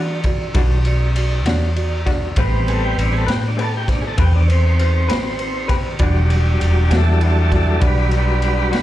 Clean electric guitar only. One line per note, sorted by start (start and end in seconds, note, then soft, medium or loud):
0.00 0.12 E3 medium
0.00 0.12 G3 medium
0.00 0.13 D4 medium
0.00 0.13 F#4 medium
0.54 0.73 E3 medium
0.54 0.73 G3 medium
0.54 0.73 D4 medium
0.54 0.74 F#4 loud
1.46 1.66 G3 soft
1.46 1.65 D4 medium
1.46 1.64 F#4 medium
2.06 2.26 G3 soft
2.06 2.25 D4 soft
2.06 2.24 F#4 medium
2.37 2.55 A3 medium
2.37 2.56 C4 medium
2.37 2.56 G4 loud
2.37 2.57 B4 medium
3.26 3.47 C4 soft
3.26 3.46 G4 soft
3.26 3.45 B4 medium
3.57 3.76 A3 medium
3.57 3.76 C4 medium
3.57 3.77 G4 medium
3.57 3.78 B4 medium
4.18 4.36 A3 medium
4.18 4.37 C4 medium
4.18 4.37 G4 medium
4.18 4.37 B4 medium
5.09 5.29 C4 soft
5.09 5.28 G4 soft
5.09 5.27 B4 soft
5.68 5.89 C4 soft
5.68 5.88 G4 medium
5.68 5.87 B4 medium
5.99 6.18 E3 medium
5.99 6.19 G3 medium
5.99 6.19 D4 loud
5.99 6.20 F#4 loud
6.91 7.11 G3 soft
6.91 7.10 D4 soft
6.91 7.09 F#4 soft
7.22 7.40 E3 medium
7.22 7.41 G3 medium
7.22 7.42 D4 medium
7.22 7.42 F#4 medium
7.80 7.99 E3 medium
7.80 8.01 G3 medium
7.80 8.00 D4 medium
7.80 8.01 F#4 medium
8.72 8.82 G3 soft
8.72 8.82 D4 soft
8.72 8.82 F#4 soft